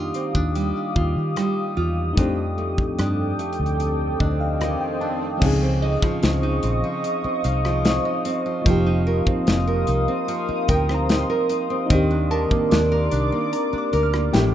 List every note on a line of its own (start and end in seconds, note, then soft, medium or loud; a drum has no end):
0.00 0.10 F2 medium
0.00 2.20 D#3 medium
0.00 2.12 A#3 medium
0.00 0.14 D4 medium
0.00 2.13 D4 medium
0.00 2.12 D#4 medium
0.00 0.95 F4 medium
0.00 2.11 F4 medium
0.00 2.14 G4 medium
0.00 2.19 G4 medium
0.00 2.14 F5 medium
0.00 2.14 D6 medium
0.00 5.38 D#6 medium
0.00 swell medium
0.14 0.35 C4 medium
0.14 closed hi-hat medium
0.35 0.71 D#2 medium
0.35 2.26 D4 soft
0.35 kick medium
0.55 1.36 G3 medium
0.55 closed hi-hat medium
0.96 1.14 D#2 medium
0.96 1.76 F4 medium
0.96 kick medium
1.17 1.34 D#3 loud
1.36 2.61 G3 medium
1.36 cross-stick loud
1.36 closed hi-hat medium
1.77 2.13 E2 medium
1.77 2.98 F4 medium
2.13 5.37 A3 medium
2.13 5.36 D#4 medium
2.17 5.42 F2 medium
2.17 2.90 F2 loud
2.17 5.38 C4 medium
2.17 5.39 D4 medium
2.17 5.39 A4 medium
2.17 5.39 G5 medium
2.17 5.39 D6 medium
2.17 kick loud
2.17 closed hi-hat medium
2.22 5.40 G4 medium
2.58 3.38 A3 medium
2.78 kick medium
2.98 3.35 G2 medium
2.98 4.19 D4 medium
2.98 cross-stick loud
2.98 closed hi-hat medium
3.39 5.50 A3 medium
3.39 closed hi-hat medium
3.53 closed hi-hat soft
3.60 4.13 D2 medium
3.66 closed hi-hat soft
3.80 closed hi-hat medium
4.20 4.74 D2 medium
4.20 5.00 D4 medium
4.20 4.39 D#5 medium
4.20 kick medium
4.40 4.59 F5 medium
4.61 6.02 D#3 medium
4.61 4.79 D#5 medium
4.61 cross-stick loud
4.61 closed hi-hat medium
4.81 5.00 G5 medium
5.01 5.50 D4 medium
5.01 5.39 A5 medium
5.38 8.60 F3 medium
5.38 8.61 C4 medium
5.42 5.96 C#2 loud
5.42 7.04 C#3 medium
5.42 8.62 C#4 medium
5.42 8.63 D#4 medium
5.42 8.63 D#5 medium
5.42 11.86 F5 medium
5.42 8.63 C#6 medium
5.42 8.63 D#6 medium
5.42 kick loud
5.42 crash loud
5.46 8.64 G#4 medium
5.62 6.22 C4 medium
5.82 6.43 D#4 medium
5.82 7.81 D#5 medium
6.02 6.83 F3 medium
6.02 muted fingered electric bass stroke soft
6.02 kick loud
6.02 cross-stick medium
6.23 6.59 C#2 medium
6.23 6.63 C4 medium
6.23 snare loud
6.23 closed hi-hat medium
6.43 7.44 D#4 medium
6.63 6.81 A#1 medium
6.63 7.24 C4 medium
6.63 closed hi-hat medium
6.84 7.64 F3 medium
7.04 closed hi-hat medium
7.24 7.85 C4 medium
7.24 muted fingered electric bass stroke soft
7.44 7.99 C2 medium
7.44 8.05 D#4 medium
7.44 9.02 F5 medium
7.44 closed hi-hat medium
7.65 8.45 F3 medium
7.65 cross-stick loud
7.85 8.25 C4 medium
7.85 snare loud
7.85 closed hi-hat medium
8.05 8.86 D#4 medium
8.25 9.10 C4 medium
8.25 closed hi-hat medium
8.46 8.66 F3 medium
8.62 11.84 F3 medium
8.62 11.85 A#3 medium
8.66 9.20 F1 loud
8.66 10.27 F3 medium
8.66 11.86 C4 medium
8.66 11.85 D#4 medium
8.66 11.87 A#4 medium
8.66 14.30 C6 medium
8.66 11.87 D#6 medium
8.66 kick loud
8.66 closed hi-hat medium
8.70 11.88 G4 medium
8.86 9.47 D#4 medium
9.07 9.67 A#4 medium
9.27 10.08 C4 medium
9.27 muted fingered electric bass stroke soft
9.27 kick medium
9.47 9.83 F1 medium
9.47 9.87 D#4 medium
9.47 snare loud
9.47 closed hi-hat medium
9.67 10.68 A#4 medium
9.87 10.06 C2 medium
9.87 10.48 D#4 medium
9.87 closed hi-hat medium
10.08 10.89 C4 medium
10.28 11.98 F3 medium
10.28 closed hi-hat medium
10.49 11.09 D#4 medium
10.49 muted fingered electric bass stroke soft
10.68 11.23 D2 medium
10.68 11.29 A#4 medium
10.68 12.27 G5 medium
10.68 kick medium
10.68 closed hi-hat medium
10.89 11.70 C4 medium
10.89 cross-stick loud
10.94 12.50 A#5 medium
11.09 11.49 D#4 medium
11.09 snare loud
11.09 closed hi-hat medium
11.20 12.73 C6 medium
11.30 12.30 A#4 medium
11.49 12.10 D#4 medium
11.49 closed hi-hat medium
11.70 12.14 C4 medium
11.86 14.29 A#3 medium
11.86 14.28 D#4 medium
11.86 closed hi-hat medium
11.90 12.44 D#2 loud
11.90 13.53 D#3 medium
11.90 14.30 C4 medium
11.90 14.31 D4 medium
11.90 14.31 A#4 medium
11.90 14.31 D5 medium
11.90 14.31 D6 medium
11.90 kick loud
11.95 14.32 G4 medium
12.11 12.70 D4 medium
12.31 12.90 A#4 medium
12.31 14.30 A5 medium
12.51 13.31 A#3 medium
12.51 muted fingered electric bass stroke soft
12.51 kick medium
12.71 13.08 D#2 loud
12.71 13.11 D4 medium
12.71 snare loud
12.71 closed hi-hat medium
12.92 13.92 A#4 medium
13.11 13.30 C2 medium
13.11 13.72 D4 medium
13.11 closed hi-hat medium
13.32 14.12 A#3 medium
13.53 14.55 A#5 medium
13.53 closed hi-hat medium
13.73 14.42 D4 medium
13.73 muted fingered electric bass stroke soft
13.78 14.55 D6 medium
13.93 14.29 D2 medium
13.93 14.42 A#4 medium
13.93 closed hi-hat medium
14.03 14.55 F6 medium
14.13 14.42 A#3 medium
14.13 cross-stick loud
14.32 14.55 A1 loud
14.32 14.55 A2 medium
14.32 14.55 F3 medium
14.32 14.55 A3 medium
14.32 14.55 C#4 medium
14.32 14.55 E4 medium
14.32 14.55 G5 medium
14.32 snare loud
14.32 closed hi-hat medium
14.36 14.55 G4 medium